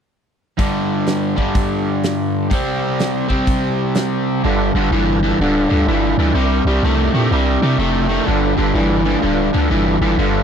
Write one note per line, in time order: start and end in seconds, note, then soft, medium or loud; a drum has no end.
0.58 1.35 G2 medium
0.58 1.36 D3 medium
0.58 1.36 G3 medium
0.58 kick medium
0.58 open hi-hat soft
1.07 snare medium
1.07 open hi-hat soft
1.37 2.50 D3 medium
1.37 2.52 G3 medium
1.37 kick medium
1.41 2.52 G2 medium
1.55 kick loud
1.55 open hi-hat soft
2.03 snare loud
2.03 open hi-hat soft
2.50 3.28 C3 medium
2.50 3.29 G3 medium
2.50 kick medium
2.50 open hi-hat soft
2.54 3.27 C4 medium
2.99 snare medium
2.99 open hi-hat soft
3.28 4.43 C3 medium
3.28 4.43 G3 medium
3.28 4.42 C4 medium
3.28 kick medium
3.47 kick medium
3.47 open hi-hat soft
3.95 snare loud
3.95 open hi-hat soft
4.44 4.71 G1 medium
4.44 4.71 G2 medium
4.44 4.71 D3 medium
4.44 4.71 D4 loud
4.44 4.72 F4 medium
4.44 4.72 A4 medium
4.44 4.72 B4 loud
4.73 4.89 G1 medium
4.73 4.90 G2 medium
4.73 4.91 D3 medium
4.73 4.89 D4 medium
4.73 4.89 F4 medium
4.73 4.90 A4 medium
4.73 4.90 B4 medium
4.91 5.33 G1 medium
4.91 5.19 G2 medium
4.91 5.19 E3 medium
4.91 5.20 D4 medium
4.91 5.20 F4 medium
4.91 5.21 B4 medium
4.96 5.21 A4 medium
5.23 5.38 G2 medium
5.23 5.38 E3 medium
5.23 5.37 D4 medium
5.23 5.38 F4 medium
5.23 5.38 A4 medium
5.23 5.38 B4 medium
5.38 5.66 D1 medium
5.38 5.68 G2 medium
5.38 5.68 D3 medium
5.38 5.66 D4 loud
5.38 5.67 F4 medium
5.38 5.67 A4 medium
5.38 5.67 B4 loud
5.70 5.86 D2 medium
5.70 5.85 G2 medium
5.70 5.86 D3 medium
5.70 5.85 D4 medium
5.70 5.86 F4 medium
5.70 5.86 A4 medium
5.70 5.87 B4 medium
5.86 6.14 G1 medium
5.86 6.15 G2 medium
5.86 6.15 E3 medium
5.86 6.14 D4 medium
5.86 6.14 F4 medium
5.86 6.15 A4 medium
5.86 6.15 B4 medium
6.17 6.33 D2 medium
6.17 6.34 G2 medium
6.17 6.34 E3 medium
6.17 6.32 D4 medium
6.17 6.34 F4 medium
6.17 6.34 A4 medium
6.17 6.34 B4 medium
6.33 6.61 C2 medium
6.33 6.62 C3 medium
6.33 6.63 G3 medium
6.33 6.62 D4 loud
6.33 6.62 E4 medium
6.33 6.62 G4 medium
6.33 6.63 A#4 loud
6.64 6.80 C2 medium
6.64 6.82 C3 medium
6.64 6.82 G3 medium
6.64 6.81 D4 medium
6.64 6.81 E4 medium
6.64 6.81 G4 medium
6.64 6.81 A#4 medium
6.82 7.09 C2 medium
6.82 7.11 C3 medium
6.82 7.12 A3 medium
6.82 7.10 D4 medium
6.82 7.09 E4 medium
6.82 7.11 G4 medium
6.82 7.11 A#4 medium
7.10 7.29 A#2 medium
7.10 7.29 C3 medium
7.10 7.28 D4 medium
7.10 7.28 E4 medium
7.10 7.28 G4 medium
7.10 7.28 A#4 medium
7.15 7.30 A3 medium
7.30 7.58 C2 medium
7.30 7.59 C3 medium
7.30 7.59 G3 medium
7.30 7.58 D4 medium
7.30 7.58 E4 medium
7.30 7.58 G4 medium
7.30 7.59 A#4 loud
7.61 7.77 C3 medium
7.61 7.78 G3 medium
7.61 7.77 D4 medium
7.61 7.77 E4 medium
7.61 7.77 G4 medium
7.61 7.78 A#4 medium
7.78 8.20 F1 medium
7.78 8.06 C3 medium
7.78 8.07 A3 medium
7.78 8.07 D4 medium
7.78 8.07 E4 medium
7.78 8.07 G4 medium
7.78 8.07 A4 medium
8.09 8.25 C3 medium
8.09 8.25 A3 medium
8.09 8.25 D4 medium
8.09 8.25 E4 medium
8.09 8.25 G4 medium
8.09 8.26 A#4 medium
8.26 8.54 G1 loud
8.26 8.54 G2 medium
8.26 8.54 D3 medium
8.26 8.54 D4 loud
8.26 8.54 F4 medium
8.26 8.54 A4 medium
8.26 8.54 B4 loud
8.56 8.73 G1 medium
8.56 8.72 G2 medium
8.56 8.73 D3 medium
8.56 8.72 D4 medium
8.56 8.73 F4 medium
8.56 8.73 A4 medium
8.56 8.73 B4 medium
8.73 9.16 G1 medium
8.73 9.02 G2 medium
8.73 9.02 E3 medium
8.73 9.01 D4 medium
8.73 9.01 F4 medium
8.73 9.02 A4 medium
8.73 9.01 B4 medium
9.04 9.20 G2 medium
9.04 9.21 E3 medium
9.04 9.20 D4 medium
9.04 9.19 F4 medium
9.04 9.21 A4 medium
9.04 9.21 B4 medium
9.20 9.49 D1 medium
9.20 9.50 G2 medium
9.20 9.50 D3 medium
9.20 9.49 D4 loud
9.20 9.49 F4 medium
9.20 9.49 A4 medium
9.20 9.50 B4 loud
9.52 9.69 D2 medium
9.52 9.68 G2 medium
9.52 9.69 D3 medium
9.52 9.67 D4 medium
9.52 9.68 F4 medium
9.52 9.68 A4 medium
9.52 9.68 B4 medium
9.69 9.97 G1 medium
9.69 9.97 G2 medium
9.69 9.98 E3 medium
9.69 9.97 D4 medium
9.69 9.97 F4 medium
9.69 9.97 A4 medium
9.69 9.98 B4 medium
10.01 10.16 G1 medium
10.01 10.16 G2 medium
10.01 10.17 E3 medium
10.01 10.16 D4 medium
10.01 10.15 F4 medium
10.01 10.16 A4 medium
10.01 10.17 B4 medium
10.17 10.43 G1 medium
10.17 10.43 G2 medium
10.17 10.43 D3 medium
10.17 10.43 D4 medium
10.17 10.43 F4 medium
10.17 10.43 A4 medium
10.17 10.43 B4 loud